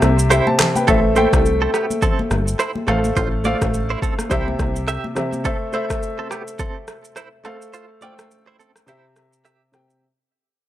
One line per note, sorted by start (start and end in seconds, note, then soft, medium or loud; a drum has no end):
0.00 0.41 C2 loud
0.00 0.43 C3 medium
0.00 0.44 C4 medium
0.00 0.30 G4 medium
0.00 0.29 E5 loud
0.00 cross-stick loud
0.00 high conga medium
0.00 shaker medium
0.19 shaker medium
0.30 0.50 E4 medium
0.30 0.47 G4 medium
0.30 0.49 C5 medium
0.30 0.46 E5 medium
0.30 cross-stick medium
0.30 shaker medium
0.47 0.75 C5 medium
0.47 0.74 A5 medium
0.47 high conga medium
0.59 cross-stick loud
0.59 clap loud
0.59 open hi-hat medium
0.59 low conga medium
0.59 shaker soft
0.76 1.03 B4 medium
0.76 1.03 G5 medium
0.76 high conga medium
0.76 shaker medium
0.87 1.27 A1 loud
0.87 1.07 A3 medium
0.87 0.99 C4 medium
0.87 1.07 A4 medium
0.87 0.99 A4 loud
0.87 1.08 C5 medium
0.87 1.08 E5 medium
0.87 kick loud
0.87 shaker medium
1.15 1.90 A3 medium
1.15 1.28 E4 medium
1.15 1.90 A4 medium
1.15 1.27 C5 medium
1.15 1.91 C5 medium
1.15 1.91 G5 loud
1.15 high conga medium
1.15 shaker medium
1.33 1.68 C2 loud
1.33 kick loud
1.33 cross-stick loud
1.33 shaker medium
1.46 shaker medium
1.62 1.70 C4 medium
1.62 1.69 A4 medium
1.74 1.85 B3 medium
1.74 1.84 G4 medium
1.74 cross-stick medium
1.74 shaker medium
1.90 high conga medium
1.90 shaker medium
2.02 2.21 C4 medium
2.02 2.21 A4 medium
2.02 kick loud
2.02 low conga medium
2.02 shaker medium
2.19 high conga medium
2.31 2.55 G1 medium
2.31 cross-stick medium
2.31 high conga medium
2.31 shaker medium
2.48 shaker medium
2.59 2.71 E4 medium
2.59 2.70 C5 medium
2.59 cross-stick medium
2.59 shaker medium
2.75 high conga medium
2.87 3.12 A1 loud
2.87 3.35 A3 medium
2.87 2.99 C4 medium
2.87 3.35 A4 medium
2.87 2.99 A4 medium
2.87 3.36 C5 medium
2.87 3.36 F5 loud
2.87 cross-stick loud
2.87 low conga medium
2.87 shaker soft
3.04 high conga medium
3.04 shaker medium
3.16 3.55 A1 loud
3.16 3.28 F4 medium
3.16 3.27 C5 loud
3.16 kick loud
3.16 shaker medium
3.44 4.19 A3 medium
3.44 3.56 F4 medium
3.44 4.19 A4 medium
3.44 4.19 C5 medium
3.44 3.56 D5 medium
3.44 4.20 F5 loud
3.44 high conga medium
3.44 shaker medium
3.62 3.97 A1 medium
3.62 kick loud
3.62 cross-stick loud
3.62 shaker medium
3.74 shaker medium
3.90 3.99 E4 medium
3.90 3.98 C5 medium
4.02 4.14 C4 medium
4.02 4.13 A4 medium
4.02 kick medium
4.02 shaker soft
4.19 cross-stick medium
4.19 high conga medium
4.19 shaker medium
4.30 4.55 C2 loud
4.30 5.01 C3 medium
4.30 5.01 C4 medium
4.30 4.50 E4 medium
4.30 5.01 G4 medium
4.30 4.49 C5 medium
4.30 5.02 E5 loud
4.30 kick medium
4.30 low conga medium
4.30 shaker medium
4.48 high conga medium
4.59 4.98 C2 loud
4.59 kick medium
4.59 cross-stick medium
4.59 high conga medium
4.59 shaker medium
4.76 shaker medium
4.88 5.07 G4 medium
4.88 5.06 E5 medium
4.88 cross-stick medium
4.88 shaker medium
5.04 high conga medium
5.15 5.35 C3 medium
5.15 5.36 C4 medium
5.15 5.36 G4 medium
5.15 5.37 E5 medium
5.15 cross-stick loud
5.15 low conga medium
5.15 shaker soft
5.33 high conga medium
5.33 shaker medium
5.44 5.64 A3 medium
5.44 5.56 C4 medium
5.44 5.64 A4 medium
5.44 5.56 A4 loud
5.44 5.65 C5 medium
5.44 5.65 E5 medium
5.44 kick loud
5.44 shaker medium
5.72 6.47 A3 medium
5.72 5.85 E4 medium
5.72 6.47 A4 medium
5.72 5.84 C5 medium
5.72 6.48 C5 medium
5.72 6.48 E5 loud
5.72 shaker medium
5.90 kick medium
5.90 cross-stick loud
5.90 shaker medium
6.03 shaker medium
6.19 6.27 C4 medium
6.19 6.27 A4 medium
6.31 6.42 B3 medium
6.31 6.42 G4 medium
6.31 cross-stick medium
6.31 shaker soft
6.48 shaker medium
6.59 6.78 C4 medium
6.59 6.78 A4 medium
6.59 kick medium
6.59 shaker medium
6.88 cross-stick medium
6.88 shaker medium
7.04 shaker medium
7.16 7.28 E4 medium
7.16 7.27 C5 medium
7.16 cross-stick medium
7.16 shaker medium
7.44 7.92 A3 medium
7.44 7.56 C4 medium
7.44 7.92 A4 medium
7.44 7.56 A4 medium
7.44 7.93 C5 medium
7.44 7.93 F5 loud
7.44 cross-stick loud
7.44 shaker soft
7.62 shaker medium
7.74 7.85 F4 medium
7.74 7.84 C5 loud
7.74 shaker medium
8.01 8.76 A3 medium
8.01 8.13 F4 medium
8.01 8.76 A4 medium
8.01 8.76 C5 medium
8.01 8.13 D5 medium
8.01 8.77 G5 medium
8.01 shaker medium
8.19 cross-stick loud
8.19 shaker medium
8.31 shaker medium
8.47 8.56 E4 medium
8.47 8.55 C5 medium
8.59 8.71 C4 medium
8.59 8.70 A4 medium
8.59 shaker medium
8.76 cross-stick medium
8.76 shaker medium
8.86 9.58 C3 medium
8.86 9.58 C4 medium
8.86 9.07 E4 medium
8.86 9.58 G4 medium
8.86 9.07 C5 medium
8.86 9.59 E5 medium
8.86 shaker medium
9.16 cross-stick medium
9.16 shaker medium
9.33 shaker medium
9.45 9.64 G4 medium
9.45 9.64 E5 medium
9.45 cross-stick medium
9.45 shaker medium
9.72 9.93 C3 medium
9.72 9.93 C4 medium
9.72 9.93 G4 medium
9.72 9.94 G5 medium
9.72 cross-stick loud
9.72 shaker soft
9.90 shaker medium